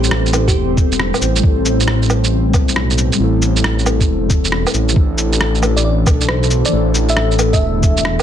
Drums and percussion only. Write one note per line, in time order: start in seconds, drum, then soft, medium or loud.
0.04 shaker medium
0.11 cross-stick loud
0.26 shaker soft
0.33 cabasa medium
0.33 low woodblock medium
0.48 kick medium
0.48 shaker medium
0.77 kick loud
0.77 cabasa medium
0.92 shaker medium
0.99 cross-stick loud
1.14 low woodblock medium
1.14 shaker soft
1.22 cabasa medium
1.36 shaker medium
1.43 kick loud
1.66 cabasa medium
1.80 shaker medium
1.88 cross-stick loud
2.02 shaker soft
2.10 cabasa medium
2.10 low woodblock medium
2.24 shaker medium
2.54 kick loud
2.54 cabasa medium
2.54 low woodblock medium
2.68 shaker medium
2.76 cross-stick loud
2.90 shaker soft
2.98 cabasa medium
3.13 shaker medium
3.42 cabasa medium
3.57 shaker medium
3.64 cross-stick loud
3.79 shaker soft
3.86 cabasa medium
3.86 low woodblock medium
4.01 kick medium
4.01 shaker medium
4.30 kick loud
4.30 cabasa medium
4.45 shaker medium
4.52 cross-stick loud
4.67 low woodblock medium
4.67 shaker soft
4.74 cabasa medium
4.89 shaker medium
4.96 kick loud
5.18 cabasa medium
5.33 shaker medium
5.41 cross-stick loud
5.55 shaker soft
5.63 cabasa medium
5.63 low woodblock medium
5.77 shaker medium
6.07 kick loud
6.07 cabasa medium
6.07 low woodblock medium
6.21 shaker medium
6.29 cross-stick loud
6.43 shaker soft
6.51 cabasa medium
6.65 shaker medium
6.95 cabasa medium
7.09 shaker medium
7.17 cross-stick loud
7.31 shaker soft
7.39 cabasa medium
7.39 low woodblock medium
7.53 kick medium
7.53 shaker medium
7.83 kick loud
7.83 cabasa medium
7.97 shaker medium
8.05 cross-stick loud
8.20 low woodblock medium
8.20 shaker soft